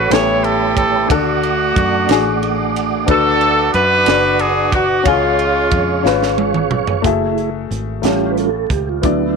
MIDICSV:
0, 0, Header, 1, 6, 480
1, 0, Start_track
1, 0, Tempo, 661521
1, 796, Time_signature, 6, 3, 24, 8
1, 6794, End_track
2, 0, Start_track
2, 0, Title_t, "Tonewheel organ"
2, 0, Program_c, 0, 16
2, 0, Note_on_c, 0, 69, 67
2, 0, Note_on_c, 0, 73, 55
2, 0, Note_on_c, 0, 78, 57
2, 0, Note_on_c, 0, 85, 67
2, 75, Note_off_c, 0, 69, 0
2, 75, Note_off_c, 0, 85, 0
2, 76, Note_off_c, 0, 78, 0
2, 79, Note_on_c, 0, 83, 76
2, 83, Note_on_c, 0, 79, 61
2, 84, Note_on_c, 0, 57, 67
2, 771, Note_off_c, 0, 73, 0
2, 790, Note_off_c, 0, 83, 0
2, 790, Note_on_c, 0, 74, 63
2, 792, Note_off_c, 0, 79, 0
2, 795, Note_on_c, 0, 78, 61
2, 799, Note_on_c, 0, 86, 76
2, 2217, Note_off_c, 0, 57, 0
2, 2225, Note_on_c, 0, 71, 61
2, 3644, Note_off_c, 0, 74, 0
2, 3646, Note_off_c, 0, 78, 0
2, 3648, Note_off_c, 0, 86, 0
2, 3656, Note_off_c, 0, 71, 0
2, 3666, Note_on_c, 0, 68, 67
2, 3666, Note_on_c, 0, 85, 71
2, 3667, Note_on_c, 0, 73, 60
2, 3671, Note_on_c, 0, 77, 61
2, 5097, Note_off_c, 0, 85, 0
2, 5098, Note_off_c, 0, 68, 0
2, 5098, Note_off_c, 0, 73, 0
2, 5100, Note_off_c, 0, 77, 0
2, 5119, Note_on_c, 0, 68, 46
2, 5123, Note_on_c, 0, 57, 41
2, 5131, Note_on_c, 0, 64, 50
2, 5437, Note_off_c, 0, 68, 0
2, 5440, Note_off_c, 0, 57, 0
2, 5444, Note_off_c, 0, 64, 0
2, 5838, Note_on_c, 0, 55, 43
2, 5845, Note_on_c, 0, 67, 82
2, 5850, Note_on_c, 0, 61, 44
2, 5853, Note_on_c, 0, 65, 52
2, 6025, Note_on_c, 0, 71, 62
2, 6037, Note_off_c, 0, 67, 0
2, 6077, Note_off_c, 0, 71, 0
2, 6090, Note_on_c, 0, 69, 89
2, 6158, Note_off_c, 0, 55, 0
2, 6164, Note_off_c, 0, 61, 0
2, 6166, Note_off_c, 0, 65, 0
2, 6309, Note_off_c, 0, 69, 0
2, 6329, Note_on_c, 0, 67, 81
2, 6448, Note_off_c, 0, 67, 0
2, 6453, Note_on_c, 0, 65, 78
2, 6567, Note_on_c, 0, 59, 42
2, 6568, Note_on_c, 0, 64, 51
2, 6570, Note_off_c, 0, 65, 0
2, 6570, Note_on_c, 0, 54, 45
2, 6575, Note_on_c, 0, 62, 77
2, 6794, Note_off_c, 0, 54, 0
2, 6794, Note_off_c, 0, 59, 0
2, 6794, Note_off_c, 0, 62, 0
2, 6794, Note_off_c, 0, 64, 0
2, 6794, End_track
3, 0, Start_track
3, 0, Title_t, "Horn section"
3, 0, Program_c, 1, 61
3, 0, Note_on_c, 1, 71, 97
3, 75, Note_off_c, 1, 71, 0
3, 82, Note_on_c, 1, 67, 73
3, 87, Note_on_c, 1, 64, 68
3, 88, Note_on_c, 1, 73, 99
3, 319, Note_on_c, 1, 69, 87
3, 322, Note_off_c, 1, 73, 0
3, 534, Note_off_c, 1, 69, 0
3, 542, Note_on_c, 1, 69, 91
3, 770, Note_off_c, 1, 67, 0
3, 772, Note_off_c, 1, 64, 0
3, 772, Note_off_c, 1, 69, 0
3, 793, Note_on_c, 1, 66, 93
3, 797, Note_on_c, 1, 57, 69
3, 801, Note_on_c, 1, 62, 68
3, 1967, Note_off_c, 1, 57, 0
3, 1969, Note_off_c, 1, 62, 0
3, 1994, Note_off_c, 1, 66, 0
3, 2236, Note_on_c, 1, 62, 78
3, 2242, Note_on_c, 1, 66, 74
3, 2245, Note_on_c, 1, 69, 110
3, 2691, Note_off_c, 1, 69, 0
3, 2709, Note_off_c, 1, 66, 0
3, 2710, Note_off_c, 1, 62, 0
3, 2718, Note_on_c, 1, 66, 87
3, 2718, Note_on_c, 1, 71, 116
3, 2719, Note_on_c, 1, 62, 93
3, 3191, Note_on_c, 1, 68, 97
3, 3196, Note_off_c, 1, 71, 0
3, 3408, Note_off_c, 1, 62, 0
3, 3408, Note_off_c, 1, 66, 0
3, 3433, Note_off_c, 1, 68, 0
3, 3441, Note_on_c, 1, 66, 91
3, 3673, Note_on_c, 1, 61, 68
3, 3675, Note_on_c, 1, 65, 93
3, 3677, Note_on_c, 1, 56, 64
3, 3678, Note_off_c, 1, 66, 0
3, 4606, Note_off_c, 1, 61, 0
3, 4608, Note_off_c, 1, 56, 0
3, 4636, Note_off_c, 1, 65, 0
3, 6794, End_track
4, 0, Start_track
4, 0, Title_t, "Upright piano"
4, 0, Program_c, 2, 0
4, 0, Control_c, 2, 64, 127
4, 0, Note_on_c, 2, 61, 74
4, 0, Note_on_c, 2, 66, 67
4, 0, Note_on_c, 2, 69, 85
4, 73, Note_on_c, 2, 55, 66
4, 79, Note_on_c, 2, 59, 62
4, 86, Note_on_c, 2, 45, 61
4, 87, Note_off_c, 2, 61, 0
4, 87, Control_c, 2, 64, 0
4, 87, Note_on_c, 2, 61, 60
4, 89, Note_off_c, 2, 69, 0
4, 90, Note_off_c, 2, 66, 0
4, 90, Note_on_c, 2, 64, 59
4, 99, Note_on_c, 2, 69, 74
4, 207, Control_c, 2, 64, 127
4, 560, Note_off_c, 2, 55, 0
4, 564, Note_off_c, 2, 59, 0
4, 568, Note_off_c, 2, 61, 0
4, 569, Note_off_c, 2, 64, 0
4, 573, Note_off_c, 2, 69, 0
4, 772, Note_off_c, 2, 45, 0
4, 778, Note_on_c, 2, 62, 74
4, 795, Note_on_c, 2, 50, 63
4, 795, Note_on_c, 2, 66, 69
4, 807, Control_c, 2, 64, 0
4, 808, Note_on_c, 2, 69, 90
4, 940, Control_c, 2, 64, 127
4, 1273, Note_off_c, 2, 62, 0
4, 1281, Note_off_c, 2, 66, 0
4, 1288, Note_off_c, 2, 69, 0
4, 1486, Note_off_c, 2, 50, 0
4, 1501, Note_on_c, 2, 62, 79
4, 1520, Note_on_c, 2, 66, 78
4, 1533, Note_on_c, 2, 68, 90
4, 1994, Note_off_c, 2, 62, 0
4, 2004, Note_off_c, 2, 66, 0
4, 2010, Note_off_c, 2, 68, 0
4, 2222, Note_on_c, 2, 62, 74
4, 2234, Note_on_c, 2, 66, 69
4, 2238, Note_on_c, 2, 50, 67
4, 2244, Control_c, 2, 64, 0
4, 2249, Note_on_c, 2, 71, 82
4, 2366, Control_c, 2, 64, 127
4, 2715, Note_off_c, 2, 62, 0
4, 2721, Note_off_c, 2, 66, 0
4, 2728, Note_off_c, 2, 71, 0
4, 2928, Note_off_c, 2, 50, 0
4, 2941, Note_on_c, 2, 62, 67
4, 2957, Note_on_c, 2, 66, 58
4, 2968, Note_on_c, 2, 74, 73
4, 3434, Note_off_c, 2, 62, 0
4, 3442, Note_off_c, 2, 66, 0
4, 3448, Note_off_c, 2, 74, 0
4, 3653, Note_on_c, 2, 61, 76
4, 3669, Note_on_c, 2, 65, 69
4, 3671, Note_on_c, 2, 49, 65
4, 3683, Note_on_c, 2, 68, 84
4, 3684, Control_c, 2, 64, 0
4, 3806, Control_c, 2, 64, 127
4, 4151, Note_off_c, 2, 61, 0
4, 4159, Note_off_c, 2, 65, 0
4, 4165, Note_off_c, 2, 68, 0
4, 4365, Note_off_c, 2, 49, 0
4, 4377, Note_on_c, 2, 61, 78
4, 4390, Note_on_c, 2, 65, 74
4, 4403, Note_on_c, 2, 71, 88
4, 4873, Note_off_c, 2, 61, 0
4, 4880, Note_off_c, 2, 65, 0
4, 4886, Note_off_c, 2, 71, 0
4, 5095, Note_on_c, 2, 57, 74
4, 5104, Note_on_c, 2, 66, 66
4, 5114, Note_on_c, 2, 68, 63
4, 5123, Note_on_c, 2, 76, 74
4, 5128, Control_c, 2, 64, 0
4, 5237, Control_c, 2, 64, 127
4, 5593, Note_off_c, 2, 57, 0
4, 5597, Note_off_c, 2, 66, 0
4, 5602, Note_off_c, 2, 68, 0
4, 5607, Note_off_c, 2, 76, 0
4, 5819, Note_on_c, 2, 57, 55
4, 5830, Note_on_c, 2, 65, 53
4, 5832, Note_on_c, 2, 45, 51
4, 5839, Note_on_c, 2, 67, 52
4, 5847, Control_c, 2, 64, 0
4, 5847, Note_on_c, 2, 73, 59
4, 5959, Control_c, 2, 64, 127
4, 6316, Note_off_c, 2, 57, 0
4, 6321, Note_off_c, 2, 65, 0
4, 6326, Note_off_c, 2, 67, 0
4, 6330, Note_off_c, 2, 73, 0
4, 6527, Note_off_c, 2, 45, 0
4, 6544, Note_on_c, 2, 59, 64
4, 6553, Note_on_c, 2, 64, 63
4, 6555, Note_on_c, 2, 50, 51
4, 6558, Note_on_c, 2, 66, 58
4, 6566, Note_on_c, 2, 74, 70
4, 6569, Control_c, 2, 64, 0
4, 6707, Control_c, 2, 64, 127
4, 6794, Note_off_c, 2, 50, 0
4, 6794, Note_off_c, 2, 59, 0
4, 6794, Note_off_c, 2, 64, 0
4, 6794, Note_off_c, 2, 66, 0
4, 6794, Note_off_c, 2, 74, 0
4, 6794, End_track
5, 0, Start_track
5, 0, Title_t, "Fingered electric bass"
5, 0, Program_c, 3, 33
5, 78, Note_on_c, 3, 33, 104
5, 768, Note_off_c, 3, 33, 0
5, 798, Note_on_c, 3, 38, 89
5, 1248, Note_off_c, 3, 38, 0
5, 1279, Note_on_c, 3, 42, 85
5, 1498, Note_off_c, 3, 42, 0
5, 1518, Note_on_c, 3, 33, 106
5, 2207, Note_off_c, 3, 33, 0
5, 2233, Note_on_c, 3, 38, 111
5, 2685, Note_off_c, 3, 38, 0
5, 2715, Note_on_c, 3, 42, 85
5, 2936, Note_off_c, 3, 42, 0
5, 2954, Note_on_c, 3, 30, 108
5, 3646, Note_off_c, 3, 30, 0
5, 3666, Note_on_c, 3, 37, 97
5, 4122, Note_off_c, 3, 37, 0
5, 4148, Note_on_c, 3, 41, 79
5, 4373, Note_off_c, 3, 41, 0
5, 4387, Note_on_c, 3, 32, 96
5, 5083, Note_off_c, 3, 32, 0
5, 5111, Note_on_c, 3, 30, 76
5, 5565, Note_off_c, 3, 30, 0
5, 5592, Note_on_c, 3, 32, 78
5, 5816, Note_off_c, 3, 32, 0
5, 5831, Note_on_c, 3, 33, 82
5, 6286, Note_off_c, 3, 33, 0
5, 6312, Note_on_c, 3, 37, 81
5, 6536, Note_off_c, 3, 37, 0
5, 6555, Note_on_c, 3, 38, 86
5, 6794, Note_off_c, 3, 38, 0
5, 6794, End_track
6, 0, Start_track
6, 0, Title_t, "Drums"
6, 81, Note_on_c, 9, 53, 64
6, 97, Note_on_c, 9, 38, 112
6, 154, Note_off_c, 9, 53, 0
6, 170, Note_off_c, 9, 38, 0
6, 321, Note_on_c, 9, 53, 41
6, 393, Note_off_c, 9, 53, 0
6, 556, Note_on_c, 9, 36, 84
6, 560, Note_on_c, 9, 53, 44
6, 629, Note_off_c, 9, 36, 0
6, 633, Note_off_c, 9, 53, 0
6, 798, Note_on_c, 9, 36, 103
6, 802, Note_on_c, 9, 53, 70
6, 871, Note_off_c, 9, 36, 0
6, 875, Note_off_c, 9, 53, 0
6, 1040, Note_on_c, 9, 53, 36
6, 1112, Note_off_c, 9, 53, 0
6, 1280, Note_on_c, 9, 36, 83
6, 1287, Note_on_c, 9, 53, 43
6, 1352, Note_off_c, 9, 36, 0
6, 1360, Note_off_c, 9, 53, 0
6, 1515, Note_on_c, 9, 53, 65
6, 1530, Note_on_c, 9, 38, 105
6, 1587, Note_off_c, 9, 53, 0
6, 1603, Note_off_c, 9, 38, 0
6, 1761, Note_on_c, 9, 53, 41
6, 1834, Note_off_c, 9, 53, 0
6, 2004, Note_on_c, 9, 53, 43
6, 2077, Note_off_c, 9, 53, 0
6, 2233, Note_on_c, 9, 53, 68
6, 2235, Note_on_c, 9, 36, 101
6, 2306, Note_off_c, 9, 53, 0
6, 2308, Note_off_c, 9, 36, 0
6, 2474, Note_on_c, 9, 53, 35
6, 2546, Note_off_c, 9, 53, 0
6, 2711, Note_on_c, 9, 53, 39
6, 2784, Note_off_c, 9, 53, 0
6, 2947, Note_on_c, 9, 53, 65
6, 2962, Note_on_c, 9, 38, 108
6, 3019, Note_off_c, 9, 53, 0
6, 3035, Note_off_c, 9, 38, 0
6, 3188, Note_on_c, 9, 53, 43
6, 3260, Note_off_c, 9, 53, 0
6, 3428, Note_on_c, 9, 36, 89
6, 3432, Note_on_c, 9, 53, 42
6, 3500, Note_off_c, 9, 36, 0
6, 3505, Note_off_c, 9, 53, 0
6, 3667, Note_on_c, 9, 53, 73
6, 3669, Note_on_c, 9, 36, 101
6, 3739, Note_off_c, 9, 53, 0
6, 3741, Note_off_c, 9, 36, 0
6, 3910, Note_on_c, 9, 53, 38
6, 3982, Note_off_c, 9, 53, 0
6, 4145, Note_on_c, 9, 53, 42
6, 4148, Note_on_c, 9, 36, 92
6, 4217, Note_off_c, 9, 53, 0
6, 4220, Note_off_c, 9, 36, 0
6, 4396, Note_on_c, 9, 38, 57
6, 4469, Note_off_c, 9, 38, 0
6, 4517, Note_on_c, 9, 38, 55
6, 4590, Note_off_c, 9, 38, 0
6, 4630, Note_on_c, 9, 48, 75
6, 4702, Note_off_c, 9, 48, 0
6, 4749, Note_on_c, 9, 47, 79
6, 4822, Note_off_c, 9, 47, 0
6, 4867, Note_on_c, 9, 45, 95
6, 4940, Note_off_c, 9, 45, 0
6, 4988, Note_on_c, 9, 43, 93
6, 5061, Note_off_c, 9, 43, 0
6, 5111, Note_on_c, 9, 36, 78
6, 5113, Note_on_c, 9, 42, 75
6, 5184, Note_off_c, 9, 36, 0
6, 5185, Note_off_c, 9, 42, 0
6, 5353, Note_on_c, 9, 42, 34
6, 5425, Note_off_c, 9, 42, 0
6, 5598, Note_on_c, 9, 42, 41
6, 5670, Note_off_c, 9, 42, 0
6, 5827, Note_on_c, 9, 42, 69
6, 5843, Note_on_c, 9, 38, 87
6, 5900, Note_off_c, 9, 42, 0
6, 5916, Note_off_c, 9, 38, 0
6, 6076, Note_on_c, 9, 42, 43
6, 6149, Note_off_c, 9, 42, 0
6, 6313, Note_on_c, 9, 36, 69
6, 6320, Note_on_c, 9, 42, 41
6, 6386, Note_off_c, 9, 36, 0
6, 6393, Note_off_c, 9, 42, 0
6, 6553, Note_on_c, 9, 42, 76
6, 6556, Note_on_c, 9, 36, 88
6, 6626, Note_off_c, 9, 42, 0
6, 6628, Note_off_c, 9, 36, 0
6, 6794, End_track
0, 0, End_of_file